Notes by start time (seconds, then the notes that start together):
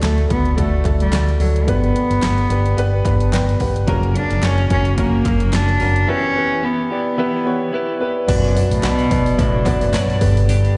Already playing: A2 A3 D4 F#4 A4
0.02 D2 A3 D4 F#4 A4, snare, clap, closed hi-hat
0.18 closed hi-hat
0.29 D2 A3 B3 D4 F#4 A4, kick, closed hi-hat
0.45 closed hi-hat
0.57 D2 A3 D4 F#4 A4, kick, closed hi-hat
0.84 D2 A3 D4 F#4 A4, kick, clap, closed hi-hat
1.00 G3, closed hi-hat
1.12 D2 A3 D4 F#4 A4, snare, clap, closed hi-hat
1.29 closed hi-hat
1.40 D2 F#3 A3 D4 F#4 A4, open hi-hat
1.56 closed hi-hat
1.67 G1 G2 D3 B3 D4 G4 B4, kick, closed hi-hat
1.84 closed hi-hat
1.95 B3 D4 G4 B4, closed hi-hat
2.11 G1, snare, closed hi-hat
2.22 G1 B3 D4 G4 B4, snare, clap, closed hi-hat
2.38 closed hi-hat
2.50 G1 B3 D4 G4 B4, closed hi-hat
2.66 closed hi-hat
2.77 G1 B3 D4 G4 B4, closed hi-hat
3.05 G1 B3 D4 G4 B4 B5, kick, clap, closed hi-hat
3.20 A5, closed hi-hat
3.32 G1 B3 D4 G4 B4 G5, snare, clap, closed hi-hat
3.49 closed hi-hat
3.60 G1 B3 D4 G4 B4 F#5, kick, open hi-hat
3.76 closed hi-hat
3.87 F#1 F#2 C#3 F#3 A#3 C#4 F#4 A#4, kick, closed hi-hat
4.03 closed hi-hat
4.14 A#3 C#4 D4 F#4 A#4, closed hi-hat
4.31 F#1, snare, closed hi-hat
4.42 F#1 F#3 A#3 C#4 F#4 A#4, snare, clap, closed hi-hat
4.58 closed hi-hat
4.70 F#1 A#3 C#4 F#4 A#4, kick, closed hi-hat
4.85 closed hi-hat
4.97 F#1 F#2 C#3 F#3 A#3 C#4 F#4 A#4, kick, closed hi-hat
5.25 F#1 A#3 C#4 F#4 A#4, kick, clap, closed hi-hat
5.40 closed hi-hat
5.52 F#1 F#3 A#3 C#4 D4 F#4 A#4, snare, clap, closed hi-hat
5.69 closed hi-hat
5.79 F#1 F#3 A#3 C#4 F#4 A#4, open hi-hat
5.96 closed hi-hat
6.07 B2 E3 B3 C#4 E4 G4 B4
6.36 B3 E4 G4 B4
6.62 E3 B3 E4 G4 B4
6.90 B3 E4 G4 D5
7.17 E3 B3 E4 G4 B4
7.45 B3 E4 G4 C#5
7.72 E3 B3 E4 G4 B4
8.00 B3 E4 G4 B4
8.27 B1 F#2 B2 F#3 B3 D4 F#4 B4 D5, kick, open hi-hat, crash
8.44 open hi-hat
8.55 B3 D4 F#4 B4 D5, open hi-hat
8.71 B1 A2, open hi-hat
8.83 B1 B2 F#3 B3 D4 F#4 B4 D5, snare, clap, open hi-hat
8.99 open hi-hat
9.10 B1 B3 D4 F#4 B4 D5, kick, open hi-hat
9.26 open hi-hat
9.38 B1 A2 F#3 B3 D4 F#4 B4 D5, kick, open hi-hat
9.65 B1 B3 D4 F#4 B4 D5, kick, clap, open hi-hat
9.81 F#2, open hi-hat
9.92 B1 G2 B2 F#3 B3 D4 F#4 B4 C#5, snare, clap, open hi-hat
10.10 open hi-hat
10.20 G1 G2 D3 G3 B3 D4 G4 B4 D5, kick, open hi-hat
10.37 open hi-hat
10.48 G2 D3 G3 B3 D4 G4, open hi-hat
10.65 open hi-hat